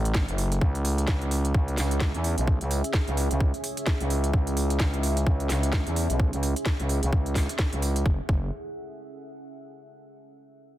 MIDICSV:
0, 0, Header, 1, 4, 480
1, 0, Start_track
1, 0, Key_signature, 3, "minor"
1, 0, Tempo, 465116
1, 635, Time_signature, 4, 2, 24, 8
1, 11126, End_track
2, 0, Start_track
2, 0, Title_t, "Ambient pad"
2, 0, Program_c, 0, 92
2, 0, Note_on_c, 0, 61, 83
2, 0, Note_on_c, 0, 69, 78
2, 0, Note_on_c, 0, 78, 91
2, 593, Note_off_c, 0, 61, 0
2, 594, Note_off_c, 0, 69, 0
2, 594, Note_off_c, 0, 78, 0
2, 636, Note_on_c, 0, 61, 84
2, 636, Note_on_c, 0, 68, 76
2, 636, Note_on_c, 0, 76, 92
2, 8274, Note_off_c, 0, 61, 0
2, 8274, Note_off_c, 0, 68, 0
2, 8274, Note_off_c, 0, 76, 0
2, 11126, End_track
3, 0, Start_track
3, 0, Title_t, "FM bass"
3, 0, Program_c, 1, 39
3, 0, Note_on_c, 1, 33, 98
3, 272, Note_off_c, 1, 33, 0
3, 294, Note_on_c, 1, 30, 92
3, 618, Note_off_c, 1, 30, 0
3, 634, Note_on_c, 1, 37, 99
3, 1098, Note_off_c, 1, 37, 0
3, 1114, Note_on_c, 1, 37, 95
3, 1578, Note_off_c, 1, 37, 0
3, 1594, Note_on_c, 1, 37, 101
3, 1818, Note_off_c, 1, 37, 0
3, 1834, Note_on_c, 1, 37, 100
3, 2191, Note_off_c, 1, 37, 0
3, 2213, Note_on_c, 1, 40, 93
3, 2431, Note_off_c, 1, 40, 0
3, 2454, Note_on_c, 1, 35, 99
3, 2671, Note_off_c, 1, 35, 0
3, 2694, Note_on_c, 1, 37, 94
3, 2912, Note_off_c, 1, 37, 0
3, 3174, Note_on_c, 1, 37, 97
3, 3391, Note_off_c, 1, 37, 0
3, 3414, Note_on_c, 1, 37, 97
3, 3631, Note_off_c, 1, 37, 0
3, 4133, Note_on_c, 1, 37, 95
3, 4458, Note_off_c, 1, 37, 0
3, 4474, Note_on_c, 1, 37, 102
3, 4938, Note_off_c, 1, 37, 0
3, 4954, Note_on_c, 1, 37, 97
3, 5418, Note_off_c, 1, 37, 0
3, 5434, Note_on_c, 1, 37, 98
3, 5658, Note_off_c, 1, 37, 0
3, 5674, Note_on_c, 1, 37, 99
3, 6031, Note_off_c, 1, 37, 0
3, 6054, Note_on_c, 1, 40, 95
3, 6271, Note_off_c, 1, 40, 0
3, 6294, Note_on_c, 1, 35, 98
3, 6511, Note_off_c, 1, 35, 0
3, 6534, Note_on_c, 1, 37, 96
3, 6751, Note_off_c, 1, 37, 0
3, 7013, Note_on_c, 1, 37, 94
3, 7231, Note_off_c, 1, 37, 0
3, 7254, Note_on_c, 1, 37, 103
3, 7338, Note_off_c, 1, 37, 0
3, 7353, Note_on_c, 1, 37, 99
3, 7711, Note_off_c, 1, 37, 0
3, 7973, Note_on_c, 1, 37, 90
3, 8298, Note_off_c, 1, 37, 0
3, 8314, Note_on_c, 1, 30, 98
3, 8463, Note_off_c, 1, 30, 0
3, 8554, Note_on_c, 1, 30, 97
3, 8777, Note_off_c, 1, 30, 0
3, 11126, End_track
4, 0, Start_track
4, 0, Title_t, "Drums"
4, 55, Note_on_c, 9, 42, 63
4, 149, Note_on_c, 9, 38, 116
4, 154, Note_on_c, 9, 36, 117
4, 158, Note_off_c, 9, 42, 0
4, 252, Note_off_c, 9, 38, 0
4, 257, Note_off_c, 9, 36, 0
4, 294, Note_on_c, 9, 42, 50
4, 395, Note_on_c, 9, 46, 97
4, 397, Note_off_c, 9, 42, 0
4, 498, Note_off_c, 9, 46, 0
4, 534, Note_on_c, 9, 42, 60
4, 634, Note_on_c, 9, 36, 120
4, 637, Note_off_c, 9, 42, 0
4, 737, Note_off_c, 9, 36, 0
4, 774, Note_on_c, 9, 42, 49
4, 875, Note_on_c, 9, 46, 101
4, 878, Note_off_c, 9, 42, 0
4, 978, Note_off_c, 9, 46, 0
4, 1014, Note_on_c, 9, 42, 61
4, 1109, Note_on_c, 9, 38, 111
4, 1114, Note_on_c, 9, 36, 108
4, 1117, Note_off_c, 9, 42, 0
4, 1212, Note_off_c, 9, 38, 0
4, 1217, Note_off_c, 9, 36, 0
4, 1254, Note_on_c, 9, 42, 34
4, 1354, Note_on_c, 9, 46, 88
4, 1357, Note_off_c, 9, 42, 0
4, 1457, Note_off_c, 9, 46, 0
4, 1494, Note_on_c, 9, 42, 60
4, 1594, Note_on_c, 9, 36, 123
4, 1597, Note_off_c, 9, 42, 0
4, 1697, Note_off_c, 9, 36, 0
4, 1734, Note_on_c, 9, 42, 34
4, 1829, Note_on_c, 9, 38, 59
4, 1835, Note_on_c, 9, 46, 108
4, 1837, Note_off_c, 9, 42, 0
4, 1933, Note_off_c, 9, 38, 0
4, 1938, Note_off_c, 9, 46, 0
4, 1973, Note_on_c, 9, 42, 64
4, 2069, Note_on_c, 9, 38, 111
4, 2074, Note_on_c, 9, 36, 115
4, 2077, Note_off_c, 9, 42, 0
4, 2172, Note_off_c, 9, 38, 0
4, 2177, Note_off_c, 9, 36, 0
4, 2214, Note_on_c, 9, 42, 49
4, 2314, Note_on_c, 9, 46, 94
4, 2317, Note_off_c, 9, 42, 0
4, 2417, Note_off_c, 9, 46, 0
4, 2453, Note_on_c, 9, 42, 59
4, 2554, Note_on_c, 9, 36, 113
4, 2557, Note_off_c, 9, 42, 0
4, 2657, Note_off_c, 9, 36, 0
4, 2694, Note_on_c, 9, 42, 54
4, 2794, Note_on_c, 9, 46, 101
4, 2797, Note_off_c, 9, 42, 0
4, 2897, Note_off_c, 9, 46, 0
4, 2934, Note_on_c, 9, 42, 65
4, 3029, Note_on_c, 9, 38, 110
4, 3034, Note_on_c, 9, 36, 110
4, 3037, Note_off_c, 9, 42, 0
4, 3132, Note_off_c, 9, 38, 0
4, 3137, Note_off_c, 9, 36, 0
4, 3174, Note_on_c, 9, 42, 36
4, 3274, Note_on_c, 9, 46, 85
4, 3277, Note_off_c, 9, 42, 0
4, 3377, Note_off_c, 9, 46, 0
4, 3413, Note_on_c, 9, 42, 63
4, 3514, Note_on_c, 9, 36, 119
4, 3517, Note_off_c, 9, 42, 0
4, 3617, Note_off_c, 9, 36, 0
4, 3653, Note_on_c, 9, 42, 36
4, 3754, Note_on_c, 9, 46, 104
4, 3757, Note_off_c, 9, 42, 0
4, 3857, Note_off_c, 9, 46, 0
4, 3893, Note_on_c, 9, 42, 67
4, 3989, Note_on_c, 9, 38, 113
4, 3994, Note_on_c, 9, 36, 113
4, 3996, Note_off_c, 9, 42, 0
4, 4092, Note_off_c, 9, 38, 0
4, 4097, Note_off_c, 9, 36, 0
4, 4133, Note_on_c, 9, 42, 51
4, 4234, Note_on_c, 9, 46, 92
4, 4236, Note_off_c, 9, 42, 0
4, 4337, Note_off_c, 9, 46, 0
4, 4374, Note_on_c, 9, 42, 62
4, 4474, Note_on_c, 9, 36, 111
4, 4477, Note_off_c, 9, 42, 0
4, 4577, Note_off_c, 9, 36, 0
4, 4613, Note_on_c, 9, 42, 52
4, 4714, Note_on_c, 9, 46, 95
4, 4717, Note_off_c, 9, 42, 0
4, 4817, Note_off_c, 9, 46, 0
4, 4854, Note_on_c, 9, 42, 65
4, 4949, Note_on_c, 9, 38, 113
4, 4954, Note_on_c, 9, 36, 106
4, 4957, Note_off_c, 9, 42, 0
4, 5052, Note_off_c, 9, 38, 0
4, 5057, Note_off_c, 9, 36, 0
4, 5094, Note_on_c, 9, 42, 36
4, 5194, Note_on_c, 9, 46, 86
4, 5197, Note_off_c, 9, 42, 0
4, 5298, Note_off_c, 9, 46, 0
4, 5334, Note_on_c, 9, 42, 69
4, 5434, Note_on_c, 9, 36, 112
4, 5437, Note_off_c, 9, 42, 0
4, 5537, Note_off_c, 9, 36, 0
4, 5574, Note_on_c, 9, 42, 35
4, 5668, Note_on_c, 9, 38, 61
4, 5674, Note_on_c, 9, 46, 104
4, 5677, Note_off_c, 9, 42, 0
4, 5772, Note_off_c, 9, 38, 0
4, 5777, Note_off_c, 9, 46, 0
4, 5813, Note_on_c, 9, 42, 70
4, 5909, Note_on_c, 9, 38, 113
4, 5914, Note_on_c, 9, 36, 107
4, 5917, Note_off_c, 9, 42, 0
4, 6012, Note_off_c, 9, 38, 0
4, 6017, Note_off_c, 9, 36, 0
4, 6054, Note_on_c, 9, 42, 52
4, 6154, Note_on_c, 9, 46, 89
4, 6157, Note_off_c, 9, 42, 0
4, 6257, Note_off_c, 9, 46, 0
4, 6294, Note_on_c, 9, 42, 65
4, 6394, Note_on_c, 9, 36, 116
4, 6397, Note_off_c, 9, 42, 0
4, 6497, Note_off_c, 9, 36, 0
4, 6534, Note_on_c, 9, 42, 54
4, 6634, Note_on_c, 9, 46, 102
4, 6637, Note_off_c, 9, 42, 0
4, 6738, Note_off_c, 9, 46, 0
4, 6774, Note_on_c, 9, 42, 66
4, 6869, Note_on_c, 9, 38, 119
4, 6874, Note_on_c, 9, 36, 109
4, 6877, Note_off_c, 9, 42, 0
4, 6972, Note_off_c, 9, 38, 0
4, 6977, Note_off_c, 9, 36, 0
4, 7013, Note_on_c, 9, 42, 38
4, 7114, Note_on_c, 9, 46, 84
4, 7117, Note_off_c, 9, 42, 0
4, 7217, Note_off_c, 9, 46, 0
4, 7253, Note_on_c, 9, 42, 68
4, 7354, Note_on_c, 9, 36, 119
4, 7356, Note_off_c, 9, 42, 0
4, 7457, Note_off_c, 9, 36, 0
4, 7493, Note_on_c, 9, 42, 38
4, 7589, Note_on_c, 9, 38, 64
4, 7594, Note_on_c, 9, 36, 58
4, 7594, Note_on_c, 9, 46, 103
4, 7596, Note_off_c, 9, 42, 0
4, 7692, Note_off_c, 9, 38, 0
4, 7697, Note_off_c, 9, 36, 0
4, 7697, Note_off_c, 9, 46, 0
4, 7734, Note_on_c, 9, 42, 70
4, 7829, Note_on_c, 9, 38, 117
4, 7834, Note_on_c, 9, 36, 108
4, 7837, Note_off_c, 9, 42, 0
4, 7932, Note_off_c, 9, 38, 0
4, 7937, Note_off_c, 9, 36, 0
4, 7973, Note_on_c, 9, 42, 56
4, 8074, Note_on_c, 9, 46, 89
4, 8077, Note_off_c, 9, 42, 0
4, 8177, Note_off_c, 9, 46, 0
4, 8214, Note_on_c, 9, 42, 68
4, 8314, Note_on_c, 9, 36, 115
4, 8317, Note_off_c, 9, 42, 0
4, 8417, Note_off_c, 9, 36, 0
4, 8554, Note_on_c, 9, 36, 109
4, 8657, Note_off_c, 9, 36, 0
4, 11126, End_track
0, 0, End_of_file